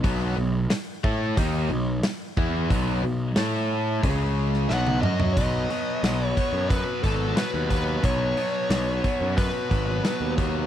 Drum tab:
HH |o---o---o---o---|o---o---o-------|o-o-o-o-o-o-o-o-|o-o-o-o-o-o-o-o-|
SD |----o-------o---|----o------oo---|----o-------o-o-|----o-------o---|
T1 |----------------|-------------o--|----------------|----------------|
T2 |----------------|--------------o-|----------------|----------------|
FT |----------------|---------------o|----------------|----------------|
BD |o-----o-o-----o-|o-------o-------|o-----o-o-o---o-|o-----o-o-o---o-|